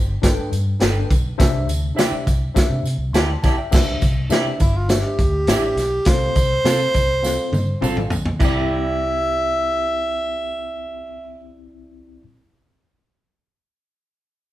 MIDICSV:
0, 0, Header, 1, 7, 480
1, 0, Start_track
1, 0, Key_signature, 0, "major"
1, 0, Tempo, 585366
1, 1146, Time_signature, 4, 2, 24, 8
1, 11913, End_track
2, 0, Start_track
2, 0, Title_t, "Tine electric piano"
2, 0, Program_c, 0, 4
2, 180, Note_on_c, 0, 62, 85
2, 187, Note_on_c, 0, 43, 66
2, 189, Note_on_c, 0, 69, 84
2, 190, Note_on_c, 0, 71, 78
2, 193, Note_on_c, 0, 79, 89
2, 436, Note_off_c, 0, 62, 0
2, 440, Note_off_c, 0, 69, 0
2, 441, Note_off_c, 0, 71, 0
2, 443, Note_off_c, 0, 79, 0
2, 655, Note_on_c, 0, 62, 86
2, 658, Note_on_c, 0, 69, 78
2, 659, Note_on_c, 0, 71, 76
2, 662, Note_on_c, 0, 79, 86
2, 872, Note_off_c, 0, 43, 0
2, 912, Note_off_c, 0, 62, 0
2, 914, Note_off_c, 0, 69, 0
2, 914, Note_off_c, 0, 71, 0
2, 916, Note_off_c, 0, 79, 0
2, 1132, Note_on_c, 0, 62, 104
2, 1135, Note_on_c, 0, 48, 79
2, 1135, Note_on_c, 0, 72, 107
2, 1137, Note_on_c, 0, 67, 98
2, 1139, Note_on_c, 0, 76, 123
2, 1390, Note_off_c, 0, 62, 0
2, 1391, Note_off_c, 0, 72, 0
2, 1392, Note_off_c, 0, 67, 0
2, 1393, Note_off_c, 0, 76, 0
2, 1598, Note_on_c, 0, 62, 76
2, 1604, Note_on_c, 0, 67, 70
2, 1608, Note_on_c, 0, 72, 74
2, 1611, Note_on_c, 0, 76, 93
2, 1824, Note_off_c, 0, 48, 0
2, 1862, Note_off_c, 0, 62, 0
2, 1865, Note_off_c, 0, 67, 0
2, 1867, Note_off_c, 0, 72, 0
2, 1868, Note_off_c, 0, 76, 0
2, 2085, Note_on_c, 0, 62, 76
2, 2088, Note_on_c, 0, 72, 74
2, 2093, Note_on_c, 0, 67, 75
2, 2093, Note_on_c, 0, 76, 86
2, 2336, Note_off_c, 0, 76, 0
2, 2344, Note_off_c, 0, 62, 0
2, 2346, Note_off_c, 0, 72, 0
2, 2348, Note_off_c, 0, 67, 0
2, 2569, Note_on_c, 0, 84, 55
2, 2576, Note_on_c, 0, 81, 50
2, 2800, Note_off_c, 0, 81, 0
2, 2801, Note_off_c, 0, 84, 0
2, 2809, Note_on_c, 0, 81, 70
2, 2927, Note_off_c, 0, 81, 0
2, 2932, Note_on_c, 0, 79, 66
2, 2938, Note_on_c, 0, 76, 57
2, 3041, Note_off_c, 0, 76, 0
2, 3045, Note_on_c, 0, 62, 92
2, 3047, Note_on_c, 0, 67, 85
2, 3048, Note_on_c, 0, 72, 87
2, 3049, Note_on_c, 0, 48, 73
2, 3051, Note_on_c, 0, 76, 98
2, 3162, Note_off_c, 0, 79, 0
2, 3303, Note_off_c, 0, 62, 0
2, 3304, Note_off_c, 0, 67, 0
2, 3304, Note_off_c, 0, 72, 0
2, 3306, Note_off_c, 0, 76, 0
2, 3522, Note_on_c, 0, 62, 82
2, 3529, Note_on_c, 0, 67, 73
2, 3532, Note_on_c, 0, 76, 92
2, 3533, Note_on_c, 0, 72, 75
2, 3738, Note_off_c, 0, 48, 0
2, 3781, Note_off_c, 0, 62, 0
2, 3784, Note_off_c, 0, 67, 0
2, 3786, Note_off_c, 0, 72, 0
2, 3786, Note_off_c, 0, 76, 0
2, 4007, Note_on_c, 0, 62, 74
2, 4012, Note_on_c, 0, 67, 67
2, 4012, Note_on_c, 0, 72, 64
2, 4018, Note_on_c, 0, 76, 78
2, 4263, Note_off_c, 0, 62, 0
2, 4265, Note_off_c, 0, 67, 0
2, 4265, Note_off_c, 0, 72, 0
2, 4268, Note_off_c, 0, 76, 0
2, 4495, Note_on_c, 0, 62, 66
2, 4495, Note_on_c, 0, 72, 62
2, 4499, Note_on_c, 0, 67, 64
2, 4500, Note_on_c, 0, 76, 78
2, 4746, Note_off_c, 0, 62, 0
2, 4746, Note_off_c, 0, 72, 0
2, 4748, Note_off_c, 0, 67, 0
2, 4749, Note_off_c, 0, 76, 0
2, 4971, Note_on_c, 0, 60, 69
2, 4971, Note_on_c, 0, 65, 71
2, 4973, Note_on_c, 0, 48, 64
2, 4973, Note_on_c, 0, 69, 69
2, 4979, Note_on_c, 0, 77, 81
2, 5224, Note_off_c, 0, 65, 0
2, 5225, Note_off_c, 0, 60, 0
2, 5225, Note_off_c, 0, 69, 0
2, 5228, Note_off_c, 0, 77, 0
2, 5449, Note_on_c, 0, 60, 71
2, 5451, Note_on_c, 0, 65, 64
2, 5452, Note_on_c, 0, 69, 65
2, 5452, Note_on_c, 0, 77, 70
2, 5660, Note_off_c, 0, 48, 0
2, 5703, Note_off_c, 0, 60, 0
2, 5704, Note_off_c, 0, 65, 0
2, 5705, Note_off_c, 0, 69, 0
2, 5705, Note_off_c, 0, 77, 0
2, 5926, Note_on_c, 0, 60, 87
2, 5931, Note_on_c, 0, 65, 74
2, 5932, Note_on_c, 0, 77, 82
2, 5934, Note_on_c, 0, 69, 67
2, 6182, Note_off_c, 0, 60, 0
2, 6184, Note_off_c, 0, 65, 0
2, 6185, Note_off_c, 0, 77, 0
2, 6186, Note_off_c, 0, 69, 0
2, 6406, Note_on_c, 0, 60, 80
2, 6410, Note_on_c, 0, 65, 68
2, 6411, Note_on_c, 0, 69, 73
2, 6413, Note_on_c, 0, 77, 90
2, 6662, Note_off_c, 0, 60, 0
2, 6665, Note_off_c, 0, 65, 0
2, 6665, Note_off_c, 0, 69, 0
2, 6666, Note_off_c, 0, 77, 0
2, 6885, Note_on_c, 0, 60, 77
2, 6892, Note_on_c, 0, 64, 66
2, 6901, Note_on_c, 0, 36, 80
2, 6903, Note_on_c, 0, 67, 68
2, 6918, Note_on_c, 0, 74, 85
2, 10012, Note_off_c, 0, 60, 0
2, 10016, Note_off_c, 0, 64, 0
2, 10020, Note_off_c, 0, 36, 0
2, 10021, Note_off_c, 0, 67, 0
2, 10029, Note_off_c, 0, 74, 0
2, 11913, End_track
3, 0, Start_track
3, 0, Title_t, "Clean electric guitar"
3, 0, Program_c, 1, 27
3, 669, Note_on_c, 1, 62, 80
3, 673, Note_on_c, 1, 69, 91
3, 680, Note_on_c, 1, 71, 98
3, 781, Note_off_c, 1, 62, 0
3, 783, Note_off_c, 1, 69, 0
3, 786, Note_off_c, 1, 71, 0
3, 1618, Note_on_c, 1, 64, 73
3, 1627, Note_on_c, 1, 67, 83
3, 1631, Note_on_c, 1, 74, 88
3, 1733, Note_off_c, 1, 64, 0
3, 1737, Note_off_c, 1, 67, 0
3, 1739, Note_off_c, 1, 74, 0
3, 2577, Note_on_c, 1, 64, 78
3, 2586, Note_on_c, 1, 67, 81
3, 2592, Note_on_c, 1, 74, 82
3, 2690, Note_off_c, 1, 64, 0
3, 2695, Note_off_c, 1, 67, 0
3, 2698, Note_off_c, 1, 74, 0
3, 2822, Note_on_c, 1, 64, 64
3, 2827, Note_on_c, 1, 67, 65
3, 2834, Note_on_c, 1, 74, 66
3, 2908, Note_off_c, 1, 64, 0
3, 2911, Note_off_c, 1, 67, 0
3, 2914, Note_off_c, 1, 74, 0
3, 3540, Note_on_c, 1, 64, 79
3, 3547, Note_on_c, 1, 67, 80
3, 3550, Note_on_c, 1, 74, 98
3, 3650, Note_off_c, 1, 64, 0
3, 3654, Note_off_c, 1, 67, 0
3, 3656, Note_off_c, 1, 74, 0
3, 4495, Note_on_c, 1, 64, 90
3, 4499, Note_on_c, 1, 67, 77
3, 4505, Note_on_c, 1, 74, 87
3, 4607, Note_off_c, 1, 64, 0
3, 4609, Note_off_c, 1, 67, 0
3, 4612, Note_off_c, 1, 74, 0
3, 5454, Note_on_c, 1, 60, 76
3, 5459, Note_on_c, 1, 65, 96
3, 5465, Note_on_c, 1, 69, 92
3, 5566, Note_off_c, 1, 60, 0
3, 5569, Note_off_c, 1, 65, 0
3, 5572, Note_off_c, 1, 69, 0
3, 6409, Note_on_c, 1, 60, 62
3, 6418, Note_on_c, 1, 65, 75
3, 6422, Note_on_c, 1, 69, 79
3, 6524, Note_off_c, 1, 60, 0
3, 6529, Note_off_c, 1, 65, 0
3, 6531, Note_off_c, 1, 69, 0
3, 6884, Note_on_c, 1, 64, 70
3, 6905, Note_on_c, 1, 67, 75
3, 6924, Note_on_c, 1, 74, 77
3, 10044, Note_off_c, 1, 64, 0
3, 10055, Note_off_c, 1, 67, 0
3, 10065, Note_off_c, 1, 74, 0
3, 11913, End_track
4, 0, Start_track
4, 0, Title_t, "Tenor saxophone"
4, 0, Program_c, 2, 66
4, 3781, Note_on_c, 2, 64, 77
4, 3910, Note_on_c, 2, 65, 74
4, 3923, Note_off_c, 2, 64, 0
4, 4020, Note_off_c, 2, 65, 0
4, 4025, Note_on_c, 2, 67, 89
4, 4987, Note_on_c, 2, 72, 117
4, 4999, Note_off_c, 2, 67, 0
4, 6661, Note_off_c, 2, 72, 0
4, 6901, Note_on_c, 2, 76, 86
4, 9446, Note_off_c, 2, 76, 0
4, 11913, End_track
5, 0, Start_track
5, 0, Title_t, "Fingered electric bass"
5, 0, Program_c, 3, 33
5, 0, Note_on_c, 3, 31, 93
5, 125, Note_off_c, 3, 31, 0
5, 189, Note_on_c, 3, 31, 101
5, 276, Note_off_c, 3, 31, 0
5, 425, Note_on_c, 3, 43, 96
5, 600, Note_off_c, 3, 43, 0
5, 667, Note_on_c, 3, 31, 90
5, 841, Note_off_c, 3, 31, 0
5, 903, Note_on_c, 3, 35, 100
5, 1078, Note_off_c, 3, 35, 0
5, 1146, Note_on_c, 3, 36, 108
5, 1381, Note_off_c, 3, 36, 0
5, 1381, Note_on_c, 3, 38, 86
5, 1556, Note_off_c, 3, 38, 0
5, 1856, Note_on_c, 3, 36, 86
5, 2032, Note_off_c, 3, 36, 0
5, 2209, Note_on_c, 3, 48, 111
5, 2300, Note_off_c, 3, 48, 0
5, 2326, Note_on_c, 3, 48, 90
5, 2418, Note_off_c, 3, 48, 0
5, 2441, Note_on_c, 3, 36, 83
5, 2535, Note_off_c, 3, 36, 0
5, 2564, Note_on_c, 3, 38, 91
5, 2743, Note_off_c, 3, 38, 0
5, 2813, Note_on_c, 3, 35, 85
5, 2902, Note_off_c, 3, 35, 0
5, 3057, Note_on_c, 3, 36, 99
5, 3231, Note_off_c, 3, 36, 0
5, 3294, Note_on_c, 3, 36, 83
5, 3522, Note_on_c, 3, 48, 99
5, 3535, Note_off_c, 3, 36, 0
5, 3701, Note_off_c, 3, 48, 0
5, 3769, Note_on_c, 3, 31, 90
5, 4120, Note_off_c, 3, 31, 0
5, 4250, Note_on_c, 3, 38, 95
5, 4486, Note_on_c, 3, 33, 90
5, 4498, Note_off_c, 3, 38, 0
5, 4663, Note_off_c, 3, 33, 0
5, 4723, Note_on_c, 3, 35, 96
5, 4901, Note_off_c, 3, 35, 0
5, 4970, Note_on_c, 3, 36, 108
5, 5146, Note_off_c, 3, 36, 0
5, 5212, Note_on_c, 3, 36, 81
5, 5387, Note_off_c, 3, 36, 0
5, 5448, Note_on_c, 3, 48, 92
5, 5624, Note_off_c, 3, 48, 0
5, 5692, Note_on_c, 3, 36, 88
5, 6041, Note_off_c, 3, 36, 0
5, 6167, Note_on_c, 3, 43, 78
5, 6344, Note_off_c, 3, 43, 0
5, 6407, Note_on_c, 3, 33, 92
5, 6649, Note_off_c, 3, 33, 0
5, 6649, Note_on_c, 3, 35, 80
5, 6825, Note_off_c, 3, 35, 0
5, 6891, Note_on_c, 3, 36, 95
5, 10015, Note_off_c, 3, 36, 0
5, 11913, End_track
6, 0, Start_track
6, 0, Title_t, "Muted fingered electric bass strokes"
6, 313, Note_on_c, 9, 29, 50
6, 395, Note_off_c, 9, 29, 0
6, 1734, Note_on_c, 9, 29, 49
6, 1816, Note_off_c, 9, 29, 0
6, 11913, End_track
7, 0, Start_track
7, 0, Title_t, "Drums"
7, 191, Note_on_c, 9, 36, 95
7, 191, Note_on_c, 9, 42, 100
7, 195, Note_on_c, 9, 38, 107
7, 197, Note_on_c, 9, 54, 91
7, 273, Note_off_c, 9, 36, 0
7, 273, Note_off_c, 9, 42, 0
7, 277, Note_off_c, 9, 38, 0
7, 279, Note_off_c, 9, 54, 0
7, 432, Note_on_c, 9, 42, 62
7, 432, Note_on_c, 9, 54, 57
7, 514, Note_off_c, 9, 42, 0
7, 514, Note_off_c, 9, 54, 0
7, 659, Note_on_c, 9, 42, 92
7, 668, Note_on_c, 9, 38, 126
7, 672, Note_on_c, 9, 54, 86
7, 741, Note_off_c, 9, 42, 0
7, 750, Note_off_c, 9, 38, 0
7, 754, Note_off_c, 9, 54, 0
7, 906, Note_on_c, 9, 36, 100
7, 906, Note_on_c, 9, 42, 65
7, 912, Note_on_c, 9, 54, 55
7, 988, Note_off_c, 9, 36, 0
7, 988, Note_off_c, 9, 42, 0
7, 994, Note_off_c, 9, 54, 0
7, 1146, Note_on_c, 9, 36, 109
7, 1147, Note_on_c, 9, 42, 114
7, 1150, Note_on_c, 9, 54, 86
7, 1157, Note_on_c, 9, 38, 108
7, 1228, Note_off_c, 9, 36, 0
7, 1229, Note_off_c, 9, 42, 0
7, 1232, Note_off_c, 9, 54, 0
7, 1239, Note_off_c, 9, 38, 0
7, 1386, Note_on_c, 9, 54, 71
7, 1389, Note_on_c, 9, 42, 67
7, 1468, Note_off_c, 9, 54, 0
7, 1471, Note_off_c, 9, 42, 0
7, 1628, Note_on_c, 9, 54, 86
7, 1631, Note_on_c, 9, 42, 103
7, 1632, Note_on_c, 9, 38, 114
7, 1710, Note_off_c, 9, 54, 0
7, 1713, Note_off_c, 9, 42, 0
7, 1714, Note_off_c, 9, 38, 0
7, 1861, Note_on_c, 9, 42, 57
7, 1862, Note_on_c, 9, 36, 78
7, 1865, Note_on_c, 9, 54, 62
7, 1943, Note_off_c, 9, 42, 0
7, 1944, Note_off_c, 9, 36, 0
7, 1947, Note_off_c, 9, 54, 0
7, 2100, Note_on_c, 9, 36, 93
7, 2103, Note_on_c, 9, 54, 87
7, 2104, Note_on_c, 9, 42, 95
7, 2108, Note_on_c, 9, 38, 99
7, 2182, Note_off_c, 9, 36, 0
7, 2185, Note_off_c, 9, 54, 0
7, 2186, Note_off_c, 9, 42, 0
7, 2190, Note_off_c, 9, 38, 0
7, 2341, Note_on_c, 9, 54, 57
7, 2353, Note_on_c, 9, 42, 58
7, 2423, Note_off_c, 9, 54, 0
7, 2435, Note_off_c, 9, 42, 0
7, 2578, Note_on_c, 9, 42, 86
7, 2578, Note_on_c, 9, 54, 84
7, 2587, Note_on_c, 9, 38, 118
7, 2660, Note_off_c, 9, 42, 0
7, 2660, Note_off_c, 9, 54, 0
7, 2669, Note_off_c, 9, 38, 0
7, 2815, Note_on_c, 9, 54, 55
7, 2819, Note_on_c, 9, 36, 96
7, 2822, Note_on_c, 9, 42, 59
7, 2833, Note_on_c, 9, 38, 39
7, 2897, Note_off_c, 9, 54, 0
7, 2901, Note_off_c, 9, 36, 0
7, 2904, Note_off_c, 9, 42, 0
7, 2915, Note_off_c, 9, 38, 0
7, 3052, Note_on_c, 9, 54, 98
7, 3058, Note_on_c, 9, 36, 118
7, 3062, Note_on_c, 9, 49, 100
7, 3071, Note_on_c, 9, 38, 124
7, 3134, Note_off_c, 9, 54, 0
7, 3140, Note_off_c, 9, 36, 0
7, 3144, Note_off_c, 9, 49, 0
7, 3153, Note_off_c, 9, 38, 0
7, 3292, Note_on_c, 9, 54, 64
7, 3296, Note_on_c, 9, 42, 70
7, 3298, Note_on_c, 9, 36, 89
7, 3374, Note_off_c, 9, 54, 0
7, 3378, Note_off_c, 9, 42, 0
7, 3380, Note_off_c, 9, 36, 0
7, 3527, Note_on_c, 9, 54, 95
7, 3544, Note_on_c, 9, 42, 98
7, 3545, Note_on_c, 9, 38, 114
7, 3609, Note_off_c, 9, 54, 0
7, 3626, Note_off_c, 9, 42, 0
7, 3627, Note_off_c, 9, 38, 0
7, 3771, Note_on_c, 9, 42, 55
7, 3771, Note_on_c, 9, 54, 63
7, 3776, Note_on_c, 9, 36, 84
7, 3853, Note_off_c, 9, 42, 0
7, 3853, Note_off_c, 9, 54, 0
7, 3858, Note_off_c, 9, 36, 0
7, 4011, Note_on_c, 9, 42, 88
7, 4016, Note_on_c, 9, 38, 99
7, 4017, Note_on_c, 9, 54, 100
7, 4093, Note_off_c, 9, 42, 0
7, 4098, Note_off_c, 9, 38, 0
7, 4099, Note_off_c, 9, 54, 0
7, 4254, Note_on_c, 9, 36, 81
7, 4254, Note_on_c, 9, 42, 64
7, 4264, Note_on_c, 9, 54, 57
7, 4336, Note_off_c, 9, 36, 0
7, 4336, Note_off_c, 9, 42, 0
7, 4346, Note_off_c, 9, 54, 0
7, 4487, Note_on_c, 9, 42, 88
7, 4496, Note_on_c, 9, 38, 127
7, 4502, Note_on_c, 9, 54, 100
7, 4569, Note_off_c, 9, 42, 0
7, 4578, Note_off_c, 9, 38, 0
7, 4584, Note_off_c, 9, 54, 0
7, 4734, Note_on_c, 9, 42, 68
7, 4746, Note_on_c, 9, 38, 42
7, 4747, Note_on_c, 9, 54, 55
7, 4816, Note_off_c, 9, 42, 0
7, 4828, Note_off_c, 9, 38, 0
7, 4829, Note_off_c, 9, 54, 0
7, 4962, Note_on_c, 9, 42, 107
7, 4972, Note_on_c, 9, 38, 122
7, 4973, Note_on_c, 9, 36, 123
7, 4978, Note_on_c, 9, 54, 88
7, 5044, Note_off_c, 9, 42, 0
7, 5054, Note_off_c, 9, 38, 0
7, 5055, Note_off_c, 9, 36, 0
7, 5060, Note_off_c, 9, 54, 0
7, 5211, Note_on_c, 9, 42, 65
7, 5215, Note_on_c, 9, 36, 89
7, 5225, Note_on_c, 9, 54, 67
7, 5293, Note_off_c, 9, 42, 0
7, 5297, Note_off_c, 9, 36, 0
7, 5307, Note_off_c, 9, 54, 0
7, 5456, Note_on_c, 9, 42, 92
7, 5457, Note_on_c, 9, 38, 119
7, 5463, Note_on_c, 9, 54, 85
7, 5538, Note_off_c, 9, 42, 0
7, 5539, Note_off_c, 9, 38, 0
7, 5545, Note_off_c, 9, 54, 0
7, 5692, Note_on_c, 9, 42, 60
7, 5697, Note_on_c, 9, 36, 84
7, 5702, Note_on_c, 9, 54, 58
7, 5774, Note_off_c, 9, 42, 0
7, 5779, Note_off_c, 9, 36, 0
7, 5784, Note_off_c, 9, 54, 0
7, 5940, Note_on_c, 9, 54, 94
7, 5944, Note_on_c, 9, 38, 55
7, 6022, Note_off_c, 9, 54, 0
7, 6026, Note_off_c, 9, 38, 0
7, 6173, Note_on_c, 9, 48, 68
7, 6184, Note_on_c, 9, 54, 56
7, 6255, Note_off_c, 9, 48, 0
7, 6266, Note_off_c, 9, 54, 0
7, 6414, Note_on_c, 9, 47, 81
7, 6425, Note_on_c, 9, 54, 94
7, 6496, Note_off_c, 9, 47, 0
7, 6507, Note_off_c, 9, 54, 0
7, 6535, Note_on_c, 9, 45, 76
7, 6617, Note_off_c, 9, 45, 0
7, 6645, Note_on_c, 9, 43, 100
7, 6655, Note_on_c, 9, 54, 56
7, 6727, Note_off_c, 9, 43, 0
7, 6737, Note_off_c, 9, 54, 0
7, 6769, Note_on_c, 9, 43, 96
7, 6851, Note_off_c, 9, 43, 0
7, 6887, Note_on_c, 9, 52, 85
7, 6893, Note_on_c, 9, 36, 105
7, 6900, Note_on_c, 9, 54, 85
7, 6969, Note_off_c, 9, 52, 0
7, 6975, Note_off_c, 9, 36, 0
7, 6982, Note_off_c, 9, 54, 0
7, 11913, End_track
0, 0, End_of_file